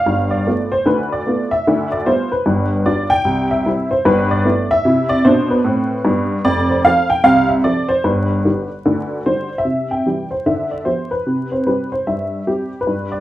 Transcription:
honky-tonk piano
Already playing: F5
0.06 G1 G2
0.31 D5
0.47 A3 B3 F4
0.72 C5
0.86 D2 D3 B4
1.12 D5
1.27 A3 B3 F4
1.51 E5
1.67 D2 D3
1.92 D5
2.06 G3 B3 F4 C5
2.32 B4
2.46 G1 G2
2.86 G3 D4 F4 D5
3.10 G5
3.25 C2 C3
3.51 E5
3.66 G3 C4 E4
3.91 C5
4.05 G1 G2 B4
4.31 D5
4.45 A3 B3 E4
4.71 E5
4.85 C3 E4
5.09 D5
5.25 B2 D4 C5
5.51 B4
5.64 A2 C4
6.05 G2 B3
6.45 F1 F2 D5
6.70 C5
6.85 F3 C4 A4 F5
7.10 G5
7.24 C2 C3 F5
7.49 E5
7.64 F3 C4 A4 D5
7.88 C5
8.04 G1 G2 B4
8.45 D3 G3 G4
8.86 D2 D3
9.26 D3 G3 G4 C5
9.58 E5
9.65 C3
9.91 G5
10.06 E3 G3 G4
10.31 C5
10.46 D3 E5
10.71 D5
10.85 F3 B3 G4 C5
11.11 B4
11.26 C3
11.52 C5
11.67 G3 C4 G4 B4
11.92 C5
12.07 G2 E5
12.47 G3 C4 G4
12.81 B4
12.87 G2
13.12 D5

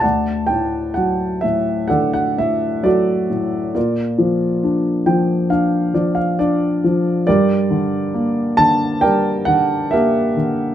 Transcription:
grand piano
0.00 D2 D5 F#5 A5
0.47 A2 G5
0.94 F#3 F#5
1.41 A2 E5
1.88 D3 A4 D5 F#5
2.13 F#5
2.38 A2 E5
2.83 F#3 F#4 A4 D5
3.30 A2
3.75 A#2 F4 A#4 D5
4.18 F3
4.63 D4
5.06 F3 G5
5.50 D4 F5
5.94 F3 D5
6.15 F5
6.39 D4 D5
6.84 F3
7.27 G2 G4 A#4 D5
7.71 D3
8.14 A#3
8.57 D3 A5
9.01 G3 A#4 D5 G5
9.45 D3 F#5
9.91 A#3 G4 A#4 E5
10.37 D3

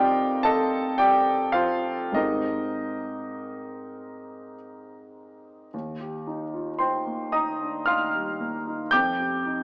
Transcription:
grand piano
Already playing: F2 G3 A3 C4 D#4 F4 G4 A#4 C5 D5 D#5 F5 G5
0.43 A4 D#5 A5
0.98 G4 D5 G5
1.52 F4 C5 F5
2.12 G#2 G#3 C4 D#4 G4 D#5
2.16 A#4
5.74 D#2
6.00 G4
6.27 D#4
6.54 F4
6.79 D#4 C5 G5 C6
7.07 A#3
7.32 D#4 D#5 A#5 D#6
7.61 D4
7.86 D#4 F5 C6 F6
8.15 G3
8.40 A#3
8.67 D#4
8.91 F2 G5 D6 G6
9.20 G4
9.46 D#4

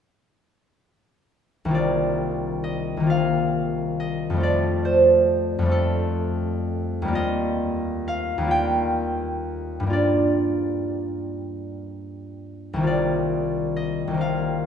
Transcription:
harp
1.65 C2 D#3 A#3
1.71 F4 D5
2.64 D#5
2.97 C2 D#3
3.03 A#3 F4
3.10 F5
4.00 D#5
4.30 F2 G3
4.37 A3 F4
4.43 D5
4.85 C5
5.59 F2 G3
5.66 A3 F4
5.72 A4
7.02 D#2 G3
7.08 A#3
7.13 F4 D#5
8.08 F5
8.38 D#2 G3
8.45 A#3 F4
8.51 G5
9.80 G2 G3
9.87 A#3 F4
9.93 D5
12.73 C2 D#3
12.80 A#3 F4
12.87 D5
13.76 D#5
14.07 C2 D#3
14.14 A#3 F4
14.21 F5

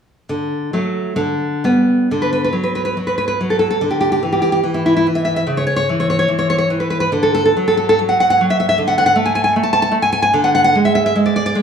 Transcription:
nylon-string guitar
0.29 D3
0.73 F#3 A3
1.16 D3
1.64 G3 B3
2.11 D3
2.22 B4
2.33 B4
2.44 B4
2.53 F#3
2.64 B4
2.75 B4
2.85 B4
2.97 F#3
3.07 B4
3.18 B4
3.28 B4
3.41 F#3
3.50 A4
3.59 A4
3.71 A4
3.81 D3
3.91 G4
4.01 G4
4.12 G4
4.23 E3
4.32 G4
4.42 G4
4.52 G4
4.64 E3
4.74 E4
4.86 E4
4.97 E4
5.07 E3
5.15 E5
5.25 E5
5.36 E5
5.47 C#3
5.57 C#5
5.67 C#5
5.76 C#5
5.89 E3
6.00 C#5
6.10 C#5
6.19 C#5
6.28 E3
6.39 C#5
6.50 C#5
6.58 C#5
6.70 E3
6.80 B4
6.90 B4
7.00 B4
7.12 D3
7.23 A4
7.35 A4
7.45 A4
7.57 F#3
7.68 A4
7.77 A4
7.89 A4
7.99 F#3
8.09 F#5
8.20 F#5
8.30 F#5
8.41 F#3
8.50 E5
8.60 E5
8.69 E5
8.78 D3
8.88 F#5
8.98 F#5
9.06 F#5
9.16 A3
9.26 G#5
9.35 G#5
9.44 G#5
9.56 A3
9.63 A5
9.73 A5
9.82 A5
9.92 A3
10.02 G#5
10.13 G#5
10.22 G#5
10.33 D3
10.44 F#5
10.55 F#5
10.64 F#5
10.75 G#3
10.85 E5
10.95 E5
11.06 E5
11.16 G#3
11.26 D5
11.36 D5
11.46 D5
11.55 G#3

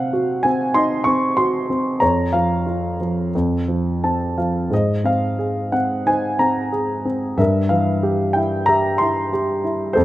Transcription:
grand piano
Already playing: C3 C4 C5 F5 F#5
0.13 F#4
0.43 C4 G#5
0.74 D#4 D#5 C6
1.04 C4 C#6
1.37 F#4 C6
1.70 C4
2.00 F2 C#5 A#5
2.33 F3 F5
2.67 F4
3.00 F3
3.35 F2
3.68 F3
4.04 C4 A5
4.38 F3 F5
4.70 G#2 C5 D#5
5.04 C4 F5
5.39 G#4
5.72 C4 F#5
6.06 D#4 C5 G#5
6.39 C4 A#5
6.72 G#4
7.05 C4
7.37 G2 A#4 E5
7.69 E3 F5
8.03 G4
8.33 E4 G5
8.66 G4 E5 A#5
8.98 E4 C6
9.33 G4
9.64 E4
9.93 F2 A4 C5

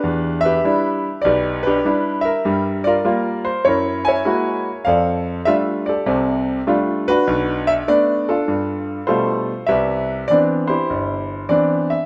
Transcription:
grand piano
Already playing: D4 G4 B4
0.04 E2
0.41 E5
0.45 G4 B4
0.64 G3 D4 E4
1.22 B1 D5
1.26 G4 B4
1.63 D4 G4 B4
1.85 G3 D4 E4
2.21 A#4 E5
2.45 G2 G3
2.84 F4 A#4 D5
3.05 G3 A#3 F4
3.45 C5
3.65 F#2 E4 C#5
3.69 A#4
4.05 C#5 E5 G#5
4.25 G#3 A#3 E4 F#4
4.85 F2 A4 D5 F5
5.45 G3 A3 D4 F4 E5
5.86 G4 A4 D5
6.06 C2 C3
6.67 G3 A3 D4 F4
7.08 D4 F#4 B4
7.27 B1
7.67 E5
7.88 A3 B3 D4 D5
8.29 D4 F4 A4
8.48 G2
9.07 B2 G3 A3 F4 A4 C5
9.67 C2 G4 B4 E5
10.28 E3 B3 C4 D4 D5
10.67 E4 G4 C5
10.90 G1
11.49 E3 B3 C4 D4 D5
11.90 E5

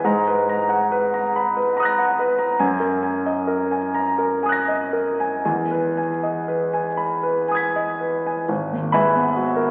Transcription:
grand piano
0.04 G#2 A#5
0.28 B4
0.49 A#5
0.69 F#5
0.92 B4
1.14 A#5
1.36 B5
1.57 B4
1.77 A#5 B5 D#6
1.83 F#6 A#6
1.99 F#5
2.19 B4
2.39 A#5
2.59 F#2 G#5
2.80 A#4
3.03 G#5
3.26 D#5
3.47 A#4
3.71 G#5
3.94 A#5
4.18 A#4
4.43 G#5 D#6
4.49 F#6 A#6
4.68 D#5
4.93 A#4
5.20 G#5
5.45 E2 G#5
5.71 B4
5.97 G#5
6.23 D#5
6.48 B4
6.74 G#5
6.97 B5
7.23 B4
7.48 G#5 D#6
7.55 G#6 B6
7.76 D#5
8.01 B4
8.26 G#5
8.48 G#1
8.72 D#2
8.92 G#3 B4 E5 G#5 B5
9.15 B3
9.36 F#4
9.56 A#4

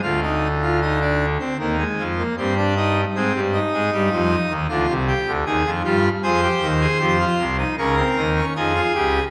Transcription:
pipe organ
0.02 D2 D3 F4
0.23 D#4
0.63 F4
0.82 D#4
1.01 D4
1.40 C4
1.59 D#2 D#3 A#3
1.79 G#3
1.98 F2 F3
2.18 A#3
2.38 G2 G3 C4
2.57 D4
2.77 D#4
3.16 G#2 G#3 C4
3.35 G2 G3
3.53 D#4
3.73 G#2 G#3
3.92 G2 G3
4.12 F2 F3
4.50 D#2 D#3
4.69 D2 D3 F4
4.88 C2 C3
5.08 G4
5.27 D2 D3
5.46 D#2 D#3 G#4
5.65 F2 F3
5.84 G2 G3 F4
6.23 F2 F3 G#4 C5
6.43 G4
6.62 D#2 D#3
6.81 G#4
7.00 F2 F3 G4
7.20 F4
7.39 C2 C3
7.58 D#4
7.78 C#2 C#3 C#4 A#4
7.97 C4
8.16 D#2 D#3
8.36 C#4
8.56 F2 F3 D#4 G#4
8.75 F4
8.94 C#2 C#3 G4

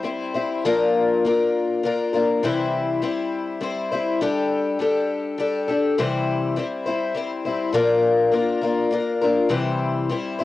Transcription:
twelve-string acoustic guitar
0.03 G3 C4 E4 C5
0.34 G3 C4 E4 C5
0.65 A#2 F3 A#3 D4 F4 A#4
1.25 A#3 D4 F4 A#4
1.83 A#3 D4 F4 A#4
2.13 A#3 D4 F4 A#4
2.43 C3 E3 G3 C4 E4 C5
3.02 G3 C4 E4 C5
3.61 G3 C4 E4 C5
3.92 G3 C4 E4 C5
4.21 G3 D4 G4 A4
4.79 G3 D4 G4 A4
5.38 G3 D4 G4 A4
5.68 D4 G4 A4
5.98 C3 E3 G3 C4 E4 C5
6.56 G3 C4 E4 C5
6.86 G3 C4 E4 C5
7.14 G3 C4 E4 C5
7.45 G3 C4 E4 C5
7.72 A#2 F3 A#3 D4 F4 A#4
8.31 A#3 D4 F4 A#4
8.61 A#3 D4 F4 A#4
8.91 A#3 D4 F4 A#4
9.21 A#3 D4 F4 A#4
9.49 C3 E3 G3 C4 E4 C5
10.09 G3 C4 E4 C5
10.39 C4 E4 C5

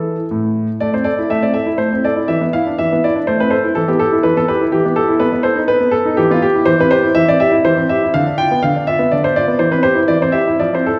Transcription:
grand piano
Already playing: E3 A4
0.31 A2
0.80 A3 D5
0.94 C4 C5
1.04 A4 D5
1.19 E4
1.30 A3 E5
1.43 C4 D5
1.54 A4 E5
1.66 E4
1.78 A3 C5
1.93 C4
2.04 A4 D5
2.16 E4
2.28 E3 E5
2.41 B3
2.53 E4 F5
2.67 D4
2.78 E3 E5
2.92 B3
3.04 E4 D5
3.16 D4
3.27 A3 C5
3.40 C4 B4
3.50 A4 C5
3.64 E4
3.75 E3 A4
3.88 B3 G4
3.99 G4 A4
4.12 E4
4.23 E3 B4
4.37 B3 A4
4.48 G4 B4
4.62 E4
4.72 E3 G4
4.85 B3
4.96 G4 A4
5.08 E4
5.20 B3 B4
5.33 B3
5.43 A4 C5
5.56 D#4
5.68 B3 B4
5.80 B3
5.91 A4
6.05 D#4
6.17 E3 G4
6.30 B3 F4
6.42 G4
6.55 E4
6.65 E3 C5
6.80 C4 B4
6.91 G4 C5
7.03 E4
7.15 E3 E5
7.28 C4 D5
7.40 G4 E5
7.52 E4
7.65 E3 C5
7.77 C4
7.89 G4 E5
8.04 E4
8.14 D3 F5
8.27 D4
8.38 F4 G5
8.51 B3
8.63 D3 F5
8.76 D4
8.87 F4 E5
8.99 B3
9.12 D3 D5
9.23 D4 C5
9.36 F4 D5
9.48 B3
9.59 E3 C5
9.71 C4 B4
9.83 G4 C5
9.95 E4
10.08 E3 D5
10.21 C4 C5
10.32 G4 E5
10.47 E4
10.59 F3 D5
10.74 C4 C5
10.86 A4

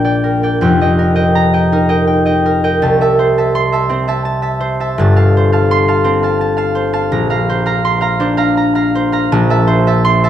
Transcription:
harp
Already playing: A#1 A#2 D4 A#4 A#5
0.04 D5 G5
0.24 A#4
0.43 D5 G5
0.61 F1 F2 G5
0.81 D#5 G5
0.99 A#4
1.16 D#5 G5
1.35 A#5
1.53 D#5 G5
1.72 D#4 A#4
1.89 D#5 G5
2.07 G5
2.26 D#5 G5
2.46 A#4
2.64 D#5 G5
2.82 C2 A5
3.01 E5 A5
3.19 C5
3.38 E5 A5
3.55 C6
3.72 E5 A5
3.89 C4 C5
4.08 E5 A5
4.25 A5
4.42 E5 A5
4.60 C5
4.80 E5 A5
4.98 G1 G2 A5
5.16 F5 A5
5.37 C5
5.52 F5 A5
5.71 C6
5.88 F5 A5
6.04 C4 C5
6.23 F5 A5
6.41 A5
6.57 F5 A5
6.75 C5
6.93 F5 A5
7.12 A#1 A#5
7.30 F5 A#5
7.49 C5
7.66 F5 A#5
7.85 C6
8.01 F5 A#5
8.20 D4 C5
8.37 F5 A#5
8.57 A#5
8.75 F5 A#5
8.95 C5
9.12 F5 A#5
9.32 A#1 A5
9.50 E5 A5
9.67 C5
9.87 E5 A5
10.05 C6
10.24 E5 A5

